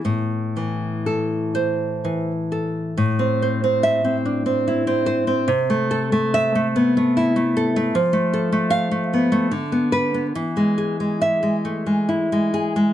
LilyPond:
\new Staff \with { instrumentName = "Nylon-string guitar" } { \time 3/4 \key a \minor \tempo 4 = 71 << { r4. c''4 r8 | r4 e''8 r4. | r4 e''8 r4. | r4 f''8 r4 b'8 |
r4 e''8 r4. | } \\ { a,8 e8 a'4 e8 a'8 | a,16 c'16 c''16 c'8 c'16 d'16 c'16 e'16 c'16 c''16 c'16 | c16 a16 a'16 a8 a16 b16 a16 e'16 a16 a'16 a16 | f16 a16 a'16 a8 a16 b16 a16 d16 b8 b16 |
e16 gis16 gis'16 gis8 gis16 a16 gis16 e'16 gis16 gis'16 gis16 | } >> }